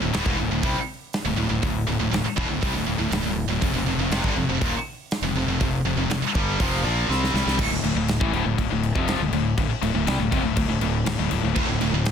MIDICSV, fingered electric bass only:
0, 0, Header, 1, 3, 480
1, 0, Start_track
1, 0, Key_signature, -1, "minor"
1, 0, Tempo, 496689
1, 1570, Time_signature, 4, 2, 24, 8
1, 11709, End_track
2, 0, Start_track
2, 0, Title_t, "Fingered electric bass"
2, 0, Program_c, 0, 33
2, 24, Note_on_c, 0, 26, 78
2, 129, Note_off_c, 0, 26, 0
2, 144, Note_on_c, 0, 26, 85
2, 249, Note_off_c, 0, 26, 0
2, 253, Note_on_c, 0, 28, 85
2, 363, Note_off_c, 0, 28, 0
2, 387, Note_on_c, 0, 26, 78
2, 490, Note_off_c, 0, 26, 0
2, 502, Note_on_c, 0, 26, 73
2, 608, Note_off_c, 0, 26, 0
2, 617, Note_on_c, 0, 36, 96
2, 725, Note_off_c, 0, 36, 0
2, 1208, Note_on_c, 0, 26, 70
2, 1321, Note_off_c, 0, 26, 0
2, 1327, Note_on_c, 0, 26, 77
2, 1440, Note_off_c, 0, 26, 0
2, 1457, Note_on_c, 0, 26, 75
2, 1565, Note_off_c, 0, 26, 0
2, 1575, Note_on_c, 0, 26, 73
2, 1796, Note_off_c, 0, 26, 0
2, 1815, Note_on_c, 0, 26, 74
2, 1925, Note_off_c, 0, 26, 0
2, 1929, Note_on_c, 0, 26, 68
2, 2042, Note_off_c, 0, 26, 0
2, 2051, Note_on_c, 0, 26, 71
2, 2163, Note_off_c, 0, 26, 0
2, 2296, Note_on_c, 0, 28, 103
2, 2406, Note_off_c, 0, 28, 0
2, 2419, Note_on_c, 0, 26, 68
2, 2527, Note_off_c, 0, 26, 0
2, 2537, Note_on_c, 0, 36, 89
2, 2646, Note_off_c, 0, 36, 0
2, 2652, Note_on_c, 0, 26, 76
2, 2762, Note_off_c, 0, 26, 0
2, 2768, Note_on_c, 0, 26, 77
2, 2879, Note_off_c, 0, 26, 0
2, 2885, Note_on_c, 0, 26, 78
2, 3000, Note_off_c, 0, 26, 0
2, 3009, Note_on_c, 0, 26, 77
2, 3113, Note_off_c, 0, 26, 0
2, 3119, Note_on_c, 0, 26, 71
2, 3349, Note_off_c, 0, 26, 0
2, 3372, Note_on_c, 0, 26, 67
2, 3484, Note_off_c, 0, 26, 0
2, 3502, Note_on_c, 0, 29, 80
2, 3606, Note_off_c, 0, 29, 0
2, 3612, Note_on_c, 0, 29, 75
2, 3724, Note_off_c, 0, 29, 0
2, 3734, Note_on_c, 0, 29, 68
2, 3841, Note_off_c, 0, 29, 0
2, 3847, Note_on_c, 0, 29, 83
2, 3959, Note_off_c, 0, 29, 0
2, 3965, Note_on_c, 0, 29, 86
2, 4081, Note_off_c, 0, 29, 0
2, 4103, Note_on_c, 0, 31, 97
2, 4198, Note_off_c, 0, 31, 0
2, 4204, Note_on_c, 0, 29, 79
2, 4320, Note_off_c, 0, 29, 0
2, 4331, Note_on_c, 0, 29, 69
2, 4444, Note_off_c, 0, 29, 0
2, 4462, Note_on_c, 0, 27, 94
2, 4570, Note_off_c, 0, 27, 0
2, 5042, Note_on_c, 0, 29, 68
2, 5160, Note_off_c, 0, 29, 0
2, 5170, Note_on_c, 0, 29, 79
2, 5284, Note_off_c, 0, 29, 0
2, 5292, Note_on_c, 0, 29, 67
2, 5405, Note_off_c, 0, 29, 0
2, 5425, Note_on_c, 0, 29, 72
2, 5644, Note_off_c, 0, 29, 0
2, 5648, Note_on_c, 0, 29, 66
2, 5761, Note_off_c, 0, 29, 0
2, 5767, Note_on_c, 0, 29, 81
2, 5883, Note_off_c, 0, 29, 0
2, 5887, Note_on_c, 0, 29, 75
2, 6003, Note_off_c, 0, 29, 0
2, 6141, Note_on_c, 0, 31, 87
2, 6362, Note_off_c, 0, 31, 0
2, 6383, Note_on_c, 0, 29, 90
2, 6600, Note_off_c, 0, 29, 0
2, 6605, Note_on_c, 0, 34, 97
2, 6833, Note_off_c, 0, 34, 0
2, 6849, Note_on_c, 0, 36, 86
2, 7075, Note_off_c, 0, 36, 0
2, 7092, Note_on_c, 0, 36, 86
2, 7205, Note_off_c, 0, 36, 0
2, 7210, Note_on_c, 0, 36, 80
2, 7324, Note_off_c, 0, 36, 0
2, 7336, Note_on_c, 0, 26, 84
2, 7443, Note_off_c, 0, 26, 0
2, 7449, Note_on_c, 0, 26, 77
2, 7559, Note_off_c, 0, 26, 0
2, 7564, Note_on_c, 0, 26, 79
2, 7676, Note_off_c, 0, 26, 0
2, 7682, Note_on_c, 0, 26, 86
2, 7911, Note_off_c, 0, 26, 0
2, 7937, Note_on_c, 0, 33, 85
2, 8031, Note_off_c, 0, 33, 0
2, 8037, Note_on_c, 0, 26, 108
2, 8157, Note_off_c, 0, 26, 0
2, 8174, Note_on_c, 0, 26, 74
2, 8285, Note_off_c, 0, 26, 0
2, 8294, Note_on_c, 0, 26, 85
2, 8400, Note_off_c, 0, 26, 0
2, 8406, Note_on_c, 0, 26, 71
2, 8633, Note_off_c, 0, 26, 0
2, 8655, Note_on_c, 0, 29, 90
2, 8878, Note_off_c, 0, 29, 0
2, 8887, Note_on_c, 0, 26, 81
2, 8996, Note_off_c, 0, 26, 0
2, 9002, Note_on_c, 0, 26, 82
2, 9230, Note_off_c, 0, 26, 0
2, 9258, Note_on_c, 0, 26, 78
2, 9367, Note_off_c, 0, 26, 0
2, 9494, Note_on_c, 0, 26, 72
2, 9605, Note_off_c, 0, 26, 0
2, 9619, Note_on_c, 0, 26, 81
2, 9728, Note_off_c, 0, 26, 0
2, 9734, Note_on_c, 0, 36, 87
2, 9845, Note_off_c, 0, 36, 0
2, 9857, Note_on_c, 0, 26, 78
2, 9966, Note_off_c, 0, 26, 0
2, 9977, Note_on_c, 0, 29, 103
2, 10072, Note_off_c, 0, 29, 0
2, 10078, Note_on_c, 0, 26, 76
2, 10196, Note_off_c, 0, 26, 0
2, 10217, Note_on_c, 0, 26, 83
2, 10321, Note_off_c, 0, 26, 0
2, 10327, Note_on_c, 0, 26, 72
2, 10441, Note_off_c, 0, 26, 0
2, 10450, Note_on_c, 0, 26, 76
2, 10674, Note_off_c, 0, 26, 0
2, 10697, Note_on_c, 0, 26, 79
2, 10806, Note_off_c, 0, 26, 0
2, 10817, Note_on_c, 0, 26, 77
2, 10926, Note_off_c, 0, 26, 0
2, 10935, Note_on_c, 0, 26, 85
2, 11045, Note_off_c, 0, 26, 0
2, 11062, Note_on_c, 0, 26, 72
2, 11169, Note_off_c, 0, 26, 0
2, 11176, Note_on_c, 0, 26, 93
2, 11286, Note_off_c, 0, 26, 0
2, 11300, Note_on_c, 0, 26, 77
2, 11408, Note_off_c, 0, 26, 0
2, 11420, Note_on_c, 0, 26, 75
2, 11525, Note_off_c, 0, 26, 0
2, 11530, Note_on_c, 0, 26, 79
2, 11709, Note_off_c, 0, 26, 0
2, 11709, End_track
3, 0, Start_track
3, 0, Title_t, "Muted fingered electric bass strokes"
3, 2175, Note_on_c, 9, 29, 38
3, 2272, Note_off_c, 9, 29, 0
3, 6007, Note_on_c, 9, 29, 40
3, 6103, Note_off_c, 9, 29, 0
3, 9374, Note_on_c, 9, 29, 40
3, 9471, Note_off_c, 9, 29, 0
3, 11709, End_track
0, 0, End_of_file